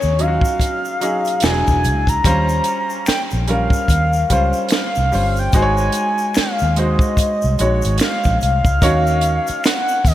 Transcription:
Already playing: F#3 C#4 D#4 G#4 C#5
0.02 D#2, shaker
0.19 F#3 C#4 D#4 F4 F5, closed hi-hat
0.28 F#4
0.41 kick, shaker
0.60 kick, closed hi-hat, shaker
0.85 shaker
1.01 F#3 C#4 D#4 G#4, closed hi-hat, shaker
1.25 closed hi-hat, shaker
1.40 E1 F#3 D4 E4 G#5, finger snap, snare, closed hi-hat, shaker
1.45 F#4
1.51 G#4
1.67 E1, kick, shaker
1.84 C#2, closed hi-hat, shaker
2.07 A#5, kick, closed hi-hat, shaker
2.24 D#2 G3 C#4 F4 C5, kick, closed hi-hat, shaker
2.49 shaker
2.64 closed hi-hat, shaker
2.90 shaker
3.06 G5, finger snap, muted fingered electric bass stroke, snare, closed hi-hat, shaker
3.31 A#1, shaker
3.48 G3 C#4 F4 A#4 F5, closed hi-hat
3.70 kick, shaker
3.88 D#2, kick, closed hi-hat, shaker
4.13 shaker
4.30 C#2 G3 C#4 F4 C5, kick, closed hi-hat, shaker
4.53 shaker
4.69 finger snap, snare, closed hi-hat, shaker
4.73 F5
4.95 C2, shaker
5.12 G1 G3 C#4 F4 C5, open hi-hat, shaker
5.36 G5, shaker
5.52 G#1 G#3 D#4 F#4 C5 G#5, kick, closed hi-hat, shaker
5.62 C#5
5.78 shaker
5.92 closed hi-hat, shaker
6.18 shaker
6.34 F5, finger snap, muted fingered electric bass stroke, snare, closed hi-hat, shaker
6.59 D#2, shaker
6.76 G#3 D#4 F#4 C5 D#5, closed hi-hat
6.99 kick, shaker
7.17 kick, closed hi-hat, shaker
7.42 C2, shaker
7.59 A#1 G#3 D#4 F#4 C#5, closed hi-hat, shaker
7.82 G#1, closed hi-hat, shaker
7.98 F5, finger snap, snare, closed hi-hat, shaker
8.24 A#1, kick, shaker
8.41 C2 F5, closed hi-hat, shaker
8.65 C#2, kick, shaker
8.82 D#2 A#3 C#4 D#4 F#4 C#5, kick, closed hi-hat, shaker
9.07 shaker
9.21 closed hi-hat, shaker
9.47 muted fingered electric bass stroke, closed hi-hat, shaker
9.64 F#5, finger snap, snare, closed hi-hat, shaker
9.88 shaker
10.05 D#2 D#5, kick, open hi-hat, shaker

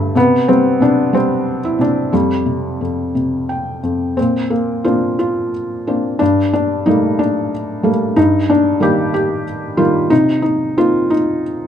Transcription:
Already playing: D2 G2 D3 A3 A4
0.15 C3 B3
0.48 G3 C4
0.80 C3 D4
1.13 G3 C4
1.65 E4
1.78 C3 D4
2.12 F2 G3
2.46 C3
2.81 F2
3.15 C3
3.49 G5
3.83 F2
4.17 A#2 C4
4.50 A#3
4.84 A#3 C4 D4 F4
5.19 F4
5.87 A#3 C4 D4
6.19 G2 D4
6.53 D4
6.86 G3 A3 A#3 D#4
7.19 D4
7.83 G3 A3 A#3
8.16 G2 D#4
8.50 D4
8.80 D#3 G3 A#3 G4
9.14 G4
9.77 D#3 G3 A#3 F4
10.10 C3 D#4
10.42 D#4
10.77 A#3 C4 D#4 F4
11.10 D#4

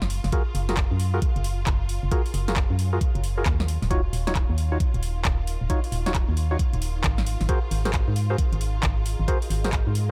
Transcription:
Already playing: F#1 F4 A#4 F5 C#6
0.02 snare
0.10 open hi-hat
0.24 F#1 C#5, snare, open hi-hat
0.32 F4 F#4 G#4 A#4 A#5, kick, closed hi-hat
0.51 F#1 G#5, open hi-hat
0.69 F4 F#4 G#4 A#4, snare, closed hi-hat
0.77 kick, clap, closed hi-hat
0.91 F#2
1.00 open hi-hat
1.14 F4 F#4 G#4 A#4
1.22 kick, closed hi-hat
1.36 F#1, closed hi-hat
1.44 open hi-hat
1.67 F#1, kick, clap, closed hi-hat
1.89 open hi-hat
2.03 F#1
2.11 F4 F#4 G#4 A#4, kick, closed hi-hat
2.26 open hi-hat
2.34 F#1, open hi-hat
2.48 F4 F#4 G#4 A#4, snare, closed hi-hat
2.56 kick, clap, closed hi-hat
2.70 F#2
2.79 open hi-hat
2.93 F4 F#4 G#4 A#4
3.01 kick, closed hi-hat
3.15 F#1, closed hi-hat
3.24 open hi-hat
3.38 F4 F#4 G#4 A#4
3.46 D#2, kick, clap, closed hi-hat
3.60 snare
3.68 D#4, open hi-hat
3.82 D#1, snare, open hi-hat
3.90 D#4 F4 F#4 A#4 C#5, kick, closed hi-hat
4.13 D#1, open hi-hat
4.27 D#4 F4 F#4 C#5, snare, closed hi-hat
4.35 kick, clap, closed hi-hat
4.49 D#2
4.58 open hi-hat
4.72 D#4 F4 F#4 C#5
4.80 kick, closed hi-hat
4.94 D#1, closed hi-hat
5.03 open hi-hat
5.25 D#1, kick, clap, closed hi-hat
5.47 open hi-hat
5.61 D#1
5.70 D#4 F4 F#4 C#5, kick, closed hi-hat
5.84 open hi-hat
5.92 D#1, open hi-hat
6.06 D#4 F4 F#4 C#5, snare, closed hi-hat
6.15 kick, clap, closed hi-hat
6.29 D#2
6.37 open hi-hat
6.51 D#4 F4 F#4 C#5
6.59 kick, closed hi-hat
6.73 D#1, closed hi-hat
6.82 open hi-hat
7.04 G#1, kick, clap, closed hi-hat
7.18 snare
7.26 G#4, open hi-hat
7.41 G#1, snare, open hi-hat
7.49 F#4 G#4 A#4 C5, kick, closed hi-hat
7.56 D#5
7.67 G#1 A#5, open hi-hat
7.85 F#4 G#4 A#4 C5, snare, closed hi-hat
7.94 C6, kick, clap, closed hi-hat
8.08 G#2
8.16 open hi-hat
8.30 F#4 G#4 A#4 C5
8.38 kick, closed hi-hat
8.52 G#1, closed hi-hat
8.61 open hi-hat
8.83 G#1, kick, clap, closed hi-hat
9.06 open hi-hat
9.20 G#1
9.28 F#4 G#4 A#4 C5, kick, closed hi-hat
9.42 open hi-hat
9.50 G#1, open hi-hat
9.64 F#4 G#4 A#4 C5, snare, closed hi-hat
9.73 kick, clap, closed hi-hat
9.87 G#2
9.95 open hi-hat

